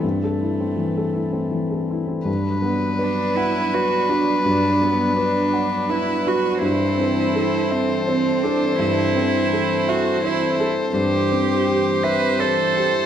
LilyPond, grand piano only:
\new Staff \with { instrumentName = "Grand piano" } { \time 3/4 \key g \major \tempo 4 = 83 <g, c'>16 a'16 e'16 c'16 e16 a'16 e'16 c'16 e16 a'16 e'16 c'16 | g,8 b8 b'8 fis''8 b'8 fis'8 | g,8 b8 b'8 fis''8 b'8 fis'8 | g,8 c'8 a'8 e''8 c''8 a'8 |
g,8 c'8 a'8 e''8 c''8 a'8 | g,8 c'8 g'8 e''8 c''8 g'8 | }